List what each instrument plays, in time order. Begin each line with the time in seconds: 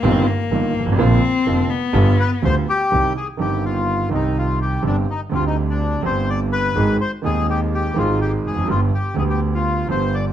0.03 double bass G1, grand piano G1 G2 D#3 G3 A#3 F4, cello C4
0.27 cello A#3
0.50 double bass G1, grand piano G1 G2 D#3 G3 A#3 F4
0.75 double bass G#1
0.80 grand piano G1
0.86 grand piano G#1
0.92 grand piano A1
0.98 double bass A#1, grand piano A#1 A#2 D3 F3 A#3 F4, cello C4
1.46 double bass F1, grand piano F1 F2 D3 F3 A#3 F4
1.70 cello B3
1.93 grand piano G1 G2 D3 G3 B3 F4, double bass G1
2.20 bandoneon B4
2.42 grand piano D2 D3 G3 B3 F4, double bass D2, bandoneon C5
2.69 bandoneon G4
2.91 grand piano C2 C3 D#3 G3 C4 G4, double bass C2
3.17 bandoneon G#4
3.37 double bass G1, grand piano G1 G2 D#3 G3 C4 G4, bandoneon G4
3.65 bandoneon F4
4.09 double bass C2, grand piano C2 C3 D#3 G3 C4 G4
4.14 bandoneon D#4
4.38 bandoneon F4
4.62 bandoneon G4
4.83 grand piano G1 G2 D3 G3 C4 G4, double bass G1, bandoneon D4
5.10 bandoneon D#4
5.29 grand piano D2 D3 G3 C4 G4, double bass D2
5.34 bandoneon F4
5.47 bandoneon D#4
5.70 bandoneon D4
6.01 double bass G1, grand piano G1 G2 D3 G3 C4
6.05 grand piano G4, bandoneon C5
6.30 bandoneon D5
6.52 bandoneon B4
6.75 grand piano G#1 G#2 D#3 G#3 C4 G#4, double bass G#1
7.01 bandoneon C5
7.22 grand piano D#1 D#2 D#3 G#3 C4, double bass D#2, bandoneon G#4
7.26 grand piano G#4
7.50 bandoneon G4
7.74 bandoneon G4
7.94 grand piano G#1 G#2 D#3 G#3 C4 G#4, double bass G#1
7.98 bandoneon F4
8.21 bandoneon G4
8.46 double bass F1, bandoneon G#4
8.51 grand piano E2
8.56 grand piano F2
8.61 grand piano F#2
8.68 grand piano G1 G2 D3 G3 B3 G4, double bass G1, bandoneon F4
8.94 bandoneon G4
9.14 grand piano D2 D3 G3 B3, double bass D2
9.18 grand piano G4, bandoneon G#4
9.30 bandoneon G4
9.54 bandoneon F4
9.87 grand piano G1 G2 D3 G3 B3 G4, double bass G1, bandoneon C5
10.14 bandoneon D5